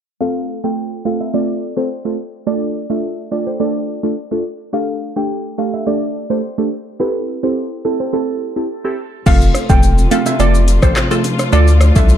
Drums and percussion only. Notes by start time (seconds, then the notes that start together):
9.26 kick, crash, shaker
9.41 shaker
9.54 cross-stick, closed hi-hat, shaker
9.70 kick, shaker
9.83 shaker
9.98 shaker
10.11 closed hi-hat, low bongo, shaker
10.26 high bongo, shaker
10.40 shaker
10.55 shaker
10.68 closed hi-hat, shaker
10.83 kick, cross-stick, shaker
10.96 cross-stick, clap, shaker
11.11 high bongo, shaker
11.24 closed hi-hat, low bongo, shaker
11.39 cross-stick, shaker
11.53 shaker
11.68 shaker
11.81 cross-stick, closed hi-hat, shaker
11.96 kick, shaker
12.09 shaker